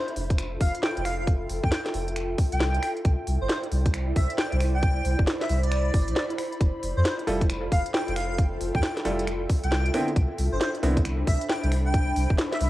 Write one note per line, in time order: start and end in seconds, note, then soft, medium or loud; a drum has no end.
0.00 2.83 F4 medium
0.00 3.89 A4 medium
0.00 0.37 C5 medium
0.00 4.35 E5 medium
0.00 0.52 B5 medium
0.08 closed hi-hat soft
0.16 0.57 F1 medium
0.16 open hi-hat medium
0.30 kick loud
0.30 closed hi-hat medium
0.38 finger snap medium
0.38 closed hi-hat medium
0.61 0.71 F1 medium
0.61 0.74 F5 medium
0.61 kick loud
0.61 open hi-hat loud
0.75 closed hi-hat medium
0.83 0.92 G5 medium
0.83 snare loud
0.97 1.46 F1 medium
0.97 1.02 G5 medium
0.97 closed hi-hat soft
1.01 3.91 G5 medium
1.05 1.14 F5 medium
1.05 finger snap medium
1.05 open hi-hat medium
1.19 1.24 F5 medium
1.27 kick loud
1.27 closed hi-hat medium
1.49 1.60 F1 medium
1.49 open hi-hat loud
1.64 1.69 F2 medium
1.64 1.69 G5 medium
1.64 kick loud
1.72 1.81 G5 medium
1.72 snare loud
1.72 closed hi-hat medium
1.86 snare medium
1.86 closed hi-hat soft
1.94 2.35 F1 medium
1.94 open hi-hat medium
2.08 closed hi-hat medium
2.16 finger snap medium
2.16 closed hi-hat medium
2.38 kick loud
2.38 open hi-hat loud
2.52 2.79 C2 medium
2.52 2.88 G5 medium
2.52 closed hi-hat medium
2.61 snare loud
2.75 closed hi-hat medium
2.83 6.61 E4 medium
2.83 finger snap medium
2.83 open hi-hat medium
2.97 7.18 D5 medium
2.97 closed hi-hat soft
3.05 3.15 C2 loud
3.05 7.87 C5 medium
3.05 kick loud
3.05 closed hi-hat medium
3.27 3.37 C2 medium
3.27 open hi-hat loud
3.41 3.47 G1 medium
3.41 3.47 C5 medium
3.49 3.58 C5 medium
3.49 snare loud
3.49 closed hi-hat medium
3.63 closed hi-hat soft
3.72 4.12 C2 medium
3.72 open hi-hat medium
3.86 kick loud
3.86 closed hi-hat medium
3.94 finger snap medium
3.94 closed hi-hat medium
4.16 4.26 C2 medium
4.16 4.29 E5 medium
4.16 kick loud
4.16 open hi-hat loud
4.30 closed hi-hat medium
4.38 4.47 G5 medium
4.38 snare loud
4.52 5.01 C2 medium
4.52 4.58 G5 medium
4.52 7.61 B5 medium
4.52 closed hi-hat soft
4.61 finger snap soft
4.61 open hi-hat medium
4.75 5.19 G5 loud
4.83 kick loud
4.83 closed hi-hat medium
5.05 5.15 C2 medium
5.05 open hi-hat loud
5.19 5.25 G1 medium
5.19 kick loud
5.27 snare loud
5.27 closed hi-hat medium
5.41 5.47 E5 medium
5.41 snare medium
5.41 closed hi-hat soft
5.49 5.90 C2 medium
5.49 5.58 E5 medium
5.49 open hi-hat medium
5.63 6.25 D5 medium
5.63 closed hi-hat medium
5.72 finger snap medium
5.72 closed hi-hat medium
5.94 6.09 G1 medium
5.94 kick loud
5.94 open hi-hat loud
6.08 6.14 C2 loud
6.08 closed hi-hat medium
6.16 snare loud
6.30 closed hi-hat soft
6.38 finger snap medium
6.38 open hi-hat medium
6.52 closed hi-hat soft
6.61 6.71 F1 medium
6.61 9.94 F4 medium
6.61 kick loud
6.61 closed hi-hat medium
6.83 6.93 F1 medium
6.83 open hi-hat loud
6.92 11.46 A4 medium
6.97 7.03 F2 medium
6.97 7.02 C5 medium
7.05 7.14 C5 medium
7.05 snare loud
7.05 closed hi-hat medium
7.19 closed hi-hat soft
7.27 7.68 F1 medium
7.27 7.41 G3 medium
7.27 7.41 E4 medium
7.27 7.41 F4 medium
7.27 7.41 A4 loud
7.27 open hi-hat medium
7.41 kick loud
7.41 closed hi-hat medium
7.46 12.70 E5 medium
7.46 finger snap medium
7.46 closed hi-hat medium
7.60 10.65 G5 medium
7.72 7.82 F1 medium
7.72 7.85 F5 medium
7.72 kick loud
7.72 open hi-hat loud
7.86 closed hi-hat medium
7.94 8.03 G5 medium
7.94 snare loud
8.08 8.57 F1 medium
8.08 8.13 G5 medium
8.08 closed hi-hat medium
8.16 8.25 F5 medium
8.16 finger snap soft
8.16 open hi-hat medium
8.30 8.35 F5 medium
8.38 kick loud
8.38 closed hi-hat medium
8.60 8.71 F1 medium
8.60 open hi-hat loud
8.75 8.81 F2 loud
8.75 8.80 G5 medium
8.75 kick loud
8.83 snare loud
8.83 closed hi-hat medium
8.97 snare medium
8.97 closed hi-hat soft
9.05 9.46 F1 medium
9.05 9.23 G3 loud
9.05 9.23 E4 medium
9.05 9.23 F4 medium
9.05 9.23 A4 loud
9.05 open hi-hat medium
9.19 closed hi-hat medium
9.27 finger snap medium
9.27 closed hi-hat medium
9.49 kick loud
9.49 open hi-hat loud
9.63 9.90 C2 loud
9.63 10.00 G5 loud
9.63 closed hi-hat medium
9.72 snare loud
9.86 closed hi-hat medium
9.94 10.07 D3 medium
9.94 10.07 B3 medium
9.94 10.07 C4 medium
9.94 12.70 D4 medium
9.94 10.07 E4 medium
9.94 finger snap soft
9.94 open hi-hat medium
10.08 closed hi-hat soft
10.16 10.26 C2 loud
10.16 kick loud
10.16 closed hi-hat medium
10.34 10.48 C2 medium
10.34 12.70 C5 medium
10.34 open hi-hat loud
10.39 12.70 B5 medium
10.52 10.58 G1 medium
10.52 10.58 C5 medium
10.60 10.69 C5 medium
10.60 snare loud
10.60 closed hi-hat medium
10.75 closed hi-hat soft
10.83 11.24 C2 medium
10.83 10.96 D3 medium
10.83 10.96 B3 medium
10.83 10.96 C4 medium
10.83 10.96 E4 loud
10.83 open hi-hat loud
10.97 kick medium
10.97 closed hi-hat medium
11.05 finger snap medium
11.05 closed hi-hat medium
11.27 11.37 C2 medium
11.27 11.40 E5 medium
11.27 kick loud
11.27 open hi-hat loud
11.41 closed hi-hat medium
11.49 11.58 G5 medium
11.49 snare loud
11.63 12.12 C2 medium
11.63 11.69 G5 medium
11.63 closed hi-hat medium
11.72 finger snap medium
11.72 open hi-hat medium
11.86 12.30 G5 loud
11.94 kick loud
11.94 closed hi-hat medium
12.16 12.26 C2 medium
12.16 open hi-hat loud
12.30 12.36 G1 medium
12.30 kick medium
12.38 snare loud
12.38 closed hi-hat medium
12.52 12.58 E5 medium
12.52 snare medium
12.52 closed hi-hat soft
12.61 12.70 C2 medium
12.61 12.70 E5 medium
12.61 open hi-hat loud